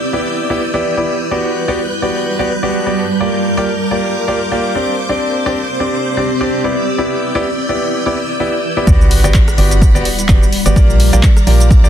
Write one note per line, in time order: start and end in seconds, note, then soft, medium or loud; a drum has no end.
0.00 2.07 E4 medium
0.00 2.07 B4 medium
0.00 1.29 D5 medium
0.00 1.29 E6 medium
0.00 8.83 G6 medium
0.13 0.47 B3 medium
0.13 0.47 E4 medium
0.13 0.47 G4 medium
0.13 0.47 D5 medium
0.50 0.60 B3 medium
0.50 0.60 E4 medium
0.50 0.60 G4 medium
0.50 0.60 D5 medium
0.74 0.94 B3 medium
0.74 0.94 E4 medium
0.74 0.94 G4 medium
0.74 0.94 D5 medium
0.97 1.15 B3 medium
0.97 1.15 E4 medium
0.97 1.15 G4 medium
0.97 1.15 D5 medium
1.31 3.87 G3 medium
1.31 1.65 B3 medium
1.31 1.65 F#4 medium
1.31 1.65 G4 medium
1.31 3.18 B4 medium
1.31 1.65 D5 medium
1.31 3.18 F#6 medium
1.40 3.81 D5 medium
1.68 1.78 B3 medium
1.68 1.78 F#4 medium
1.68 1.78 G4 medium
1.68 1.78 D5 medium
1.88 3.87 A5 medium
2.02 2.36 B3 medium
2.02 2.36 F#4 medium
2.02 2.36 G4 medium
2.02 2.36 D5 medium
2.39 2.49 B3 medium
2.39 2.49 F#4 medium
2.39 2.49 G4 medium
2.39 2.49 D5 medium
2.63 2.83 B3 medium
2.63 2.83 F#4 medium
2.63 2.83 G4 medium
2.63 2.83 D5 medium
2.87 3.04 B3 medium
2.87 3.04 F#4 medium
2.87 3.04 G4 medium
2.87 3.04 D5 medium
3.20 3.54 A#3 medium
3.20 3.54 F4 medium
3.20 3.54 G4 medium
3.20 4.86 A#4 medium
3.20 4.84 A#4 medium
3.20 3.54 D5 medium
3.20 6.71 D6 medium
3.37 4.85 F5 medium
3.37 5.62 C6 medium
3.57 3.67 A#3 medium
3.57 3.67 F4 medium
3.57 3.67 G4 medium
3.57 3.67 D5 loud
3.91 4.25 A#3 medium
3.91 4.25 F4 medium
3.91 4.25 G4 medium
3.91 4.25 D5 medium
4.28 4.38 A#3 medium
4.28 4.38 F4 medium
4.28 4.38 G4 medium
4.28 4.38 D5 medium
4.52 4.72 A#3 medium
4.52 4.72 F4 medium
4.52 4.72 G4 medium
4.52 4.72 D5 medium
4.75 4.93 C4 medium
4.75 4.93 D4 medium
4.75 4.93 G4 medium
4.75 4.93 D5 medium
4.86 6.75 C4 medium
4.86 6.73 C5 medium
4.97 7.38 G4 medium
4.97 7.61 D5 medium
5.09 5.43 C4 medium
5.09 5.43 D4 medium
5.09 5.43 G4 medium
5.09 5.43 D5 medium
5.46 5.56 C4 medium
5.46 5.56 D4 medium
5.46 5.56 G4 medium
5.46 5.56 D5 loud
5.80 6.14 C4 medium
5.80 6.14 D4 medium
5.80 6.14 G4 medium
5.80 6.14 D5 medium
6.17 6.27 C4 medium
6.17 6.27 D4 medium
6.17 6.27 G4 medium
6.17 6.27 D5 medium
6.41 6.61 C4 medium
6.41 6.61 D4 medium
6.41 6.61 G4 medium
6.41 6.61 D5 medium
6.64 6.82 B3 medium
6.64 6.82 E4 medium
6.64 6.82 G4 medium
6.64 6.82 D5 medium
6.74 9.63 E4 medium
6.74 8.85 D5 medium
6.74 8.85 E6 medium
6.98 7.32 B3 medium
6.98 7.32 E4 medium
6.98 7.32 G4 medium
6.98 9.63 B4 medium
6.98 7.32 D5 medium
7.35 7.45 B3 medium
7.35 7.45 E4 medium
7.35 7.45 G4 medium
7.35 7.45 D5 loud
7.69 8.03 B3 medium
7.69 8.03 E4 medium
7.69 8.03 G4 medium
7.69 8.03 D5 medium
8.06 8.16 B3 medium
8.06 8.16 E4 medium
8.06 8.16 G4 medium
8.06 8.16 D5 medium
8.40 8.53 B3 medium
8.40 8.53 E4 medium
8.40 8.53 G4 medium
8.40 8.53 D5 medium
8.77 8.85 B3 medium
8.77 8.85 E4 medium
8.77 8.85 G4 medium
8.77 8.85 D5 medium
8.87 9.21 G1 loud
8.87 11.43 G3 medium
8.87 9.21 B3 medium
8.87 9.21 F#4 medium
8.87 9.21 G4 medium
8.87 9.21 D5 medium
8.87 10.74 F#5 medium
8.87 10.74 B5 loud
8.87 kick loud
8.87 closed hi-hat medium
8.87 sub drop medium
8.87 shaker medium
8.92 11.43 D5 medium
9.01 shaker soft
9.11 open hi-hat loud
9.24 9.32 G1 loud
9.24 9.34 B3 loud
9.24 9.34 F#4 medium
9.24 9.34 G4 medium
9.24 9.34 D5 loud
9.24 closed hi-hat medium
9.24 shaker medium
9.34 kick loud
9.34 clap loud
9.34 closed hi-hat medium
9.34 shaker medium
9.48 cross-stick medium
9.48 closed hi-hat soft
9.48 shaker soft
9.58 9.92 G1 loud
9.58 9.92 B3 medium
9.58 9.92 F#4 medium
9.58 9.92 G4 medium
9.58 9.92 D5 medium
9.58 open hi-hat medium
9.71 closed hi-hat medium
9.71 shaker medium
9.82 kick loud
9.82 closed hi-hat medium
9.82 shaker medium
9.95 10.03 G1 loud
9.95 10.05 B3 medium
9.95 10.05 F#4 medium
9.95 10.05 G4 medium
9.95 10.05 D5 loud
9.95 shaker soft
10.05 open hi-hat loud
10.19 closed hi-hat medium
10.19 shaker medium
10.28 10.39 G1 medium
10.28 10.42 B3 medium
10.28 10.42 F#4 medium
10.28 10.42 G4 medium
10.28 10.42 D5 medium
10.28 kick loud
10.28 clap loud
10.28 closed hi-hat medium
10.28 shaker medium
10.43 shaker soft
10.53 open hi-hat loud
10.66 10.74 G1 medium
10.66 10.74 B3 medium
10.66 10.74 F#4 medium
10.66 10.74 G4 medium
10.66 10.74 D5 medium
10.66 closed hi-hat medium
10.66 shaker medium
10.76 11.10 A#1 loud
10.76 11.10 A#3 medium
10.76 11.10 F4 medium
10.76 11.10 G4 medium
10.76 11.89 A#4 medium
10.76 11.10 D5 medium
10.76 11.89 D5 medium
10.76 11.89 A#5 loud
10.76 kick loud
10.76 closed hi-hat medium
10.76 shaker medium
10.90 11.89 C6 medium
10.90 shaker soft
11.00 open hi-hat loud
11.05 11.89 F5 medium
11.13 11.21 A#1 loud
11.13 11.23 A#3 loud
11.13 11.23 F4 medium
11.13 11.23 G4 medium
11.13 11.23 D5 loud
11.13 closed hi-hat medium
11.13 shaker medium
11.23 kick loud
11.23 clap loud
11.23 closed hi-hat medium
11.23 shaker medium
11.37 cross-stick medium
11.37 closed hi-hat soft
11.37 shaker soft
11.47 11.81 A#1 medium
11.47 11.81 A#3 medium
11.47 11.81 F4 medium
11.47 11.81 G4 medium
11.47 11.81 D5 medium
11.47 open hi-hat medium
11.60 closed hi-hat medium
11.60 shaker medium
11.71 kick loud
11.71 closed hi-hat medium
11.71 shaker medium
11.84 11.89 A#1 loud
11.84 11.89 A#3 medium
11.84 11.89 F4 medium
11.84 11.89 G4 medium
11.84 11.89 D5 loud
11.84 shaker soft